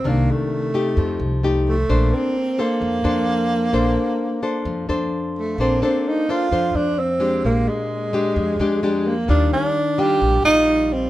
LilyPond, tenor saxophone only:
\new Staff \with { instrumentName = "Tenor saxophone" } { \time 4/4 \key bes \major \tempo 4 = 130 bes8 a2~ a8 r8 a8~ | a8 c'4 bes2~ bes8~ | bes2. r8 a8 | c'8 c'8 ees'8 f'4 d'8 c'4 |
bes8 aes2. bes8 | d'8 d'4 g'4 ees'4 c'8 | }